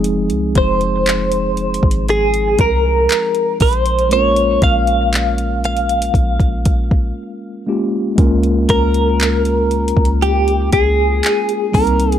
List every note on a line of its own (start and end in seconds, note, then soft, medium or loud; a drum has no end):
0.00 0.32 F1 loud
0.00 3.56 F3 medium
0.00 3.56 G#3 medium
0.00 3.57 C4 medium
0.00 3.57 D#4 medium
0.00 3.61 G#4 medium
0.04 closed hi-hat medium
0.30 0.54 C2 loud
0.30 closed hi-hat soft
0.55 1.79 F1 loud
0.55 2.05 C5 loud
0.55 kick loud
0.55 closed hi-hat medium
0.81 closed hi-hat soft
1.06 clap loud
1.06 closed hi-hat medium
1.32 closed hi-hat medium
1.57 closed hi-hat soft
1.74 closed hi-hat medium
1.83 2.56 G#1 loud
1.83 kick loud
1.91 closed hi-hat medium
2.09 2.60 G#4 loud
2.09 closed hi-hat medium
2.34 closed hi-hat medium
2.59 3.08 C2 loud
2.59 3.57 A#4 medium
2.59 kick loud
2.59 closed hi-hat medium
3.10 clap loud
3.10 closed hi-hat medium
3.35 closed hi-hat soft
3.60 4.58 A#1 loud
3.60 4.12 C5 medium
3.60 kick loud
3.60 closed hi-hat medium
3.60 open hi-hat medium
3.73 closed hi-hat medium
3.86 closed hi-hat medium
3.99 closed hi-hat medium
4.09 7.62 G#3 medium
4.09 7.63 A#3 medium
4.09 4.18 C4 soft
4.09 7.64 F4 medium
4.09 4.63 C#5 loud
4.09 closed hi-hat medium
4.14 7.64 A#4 medium
4.18 7.67 C#4 medium
4.36 closed hi-hat soft
4.62 6.11 A#1 loud
4.62 5.64 F5 loud
4.62 kick loud
4.62 closed hi-hat medium
4.87 closed hi-hat soft
5.13 clap loud
5.13 closed hi-hat medium
5.38 closed hi-hat medium
5.64 7.64 F5 medium
5.64 closed hi-hat soft
5.77 closed hi-hat medium
5.89 closed hi-hat medium
6.02 closed hi-hat medium
6.14 7.12 A#1 loud
6.14 kick medium
6.14 closed hi-hat medium
6.40 kick loud
6.40 closed hi-hat medium
6.65 kick loud
6.65 closed hi-hat medium
6.91 kick loud
7.67 8.15 G#3 medium
7.67 8.16 A#3 medium
7.67 8.17 C#4 medium
7.67 8.18 F4 medium
7.67 8.19 G4 medium
8.16 8.67 C#2 loud
8.16 11.69 G#3 medium
8.16 11.70 A#3 medium
8.16 11.70 C#4 medium
8.16 11.71 F4 medium
8.16 kick loud
8.16 closed hi-hat medium
8.21 11.71 A#4 medium
8.43 closed hi-hat soft
8.69 9.92 C#2 loud
8.69 10.18 A#4 loud
8.69 kick loud
8.69 closed hi-hat medium
8.94 closed hi-hat soft
9.20 clap loud
9.20 closed hi-hat medium
9.45 closed hi-hat medium
9.71 closed hi-hat soft
9.88 closed hi-hat medium
9.97 10.70 C#2 loud
9.97 kick loud
10.05 closed hi-hat medium
10.22 10.69 G4 loud
10.22 closed hi-hat medium
10.48 closed hi-hat medium
10.73 11.21 C#2 loud
10.73 11.78 G#4 loud
10.73 kick loud
10.73 closed hi-hat medium
11.24 clap loud
11.24 closed hi-hat medium
11.49 closed hi-hat soft
11.72 12.19 C2 loud
11.72 12.19 G3 medium
11.72 12.19 A#3 medium
11.72 12.19 C4 medium
11.72 12.19 D#4 medium
11.72 12.19 A#4 medium
11.72 kick loud
11.72 closed hi-hat medium
11.72 open hi-hat medium
11.77 11.82 G#4 medium
11.84 12.19 A#4 medium
11.84 closed hi-hat medium
12.00 closed hi-hat medium
12.12 closed hi-hat medium